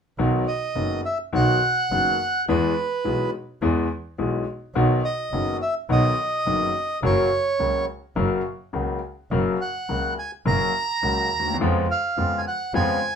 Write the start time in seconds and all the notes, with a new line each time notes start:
0.18 B1 B2 D#3 F#3 B3 F#4
0.48 D#5
0.75 F#1 F#2 D#3 F#3 B3 F#4
1.05 E5
1.33 B1 B2 D#3 F#3 B3 F#4 F#5
1.91 F#1 F#2 D#3 F#3 B3 F#4
2.48 E2 E3 G#3 B3 G#4 B4
3.04 B1 B2 E3 G#3 B3 G#4
3.62 E2 E3 G#3 B3 G#4
4.18 B1 B2 E3 G#3 B3 G#4
4.75 B1 B2 D#3 F#3 B3 F#4
5.05 D#5
5.32 F#1 F#2 D#3 F#3 B3 F#4
5.62 E5
5.89 B1 B2 D#3 F#3 B3 F#4 D#5
6.46 F#1 F#2 D#3 F#3 B3 F#4
7.03 F#1 F#2 C#3 F#3 A#3 F#4 C#5
7.59 C#2 C#3 F#3 A#3 F#4
8.16 F#1 F#2 C#3 F#3 A#3 F#4
8.73 C#2 C#3 F#3 A#3 F#4
9.31 F#1 F#2 C#3 F#3 A#3 F#4
9.61 F#5
9.89 C#2 C#3 F#3 A#3 F#4
10.19 G#5
10.46 F#1 F#2 C#3 F#3 A#3 F#4 A#5
11.03 C#2 C#3 F#3 A#3 F#4
11.31 D#2
11.39 D2
11.47 D#2
11.54 E2
11.60 F2 C#3 F3 G#3 B3 F4
11.91 F5
12.17 F2 C#3 F3 G#3 B3 F4
12.38 G#5
12.47 F#5
12.74 F2 C#3 F3 G#3 B3 F4 G#5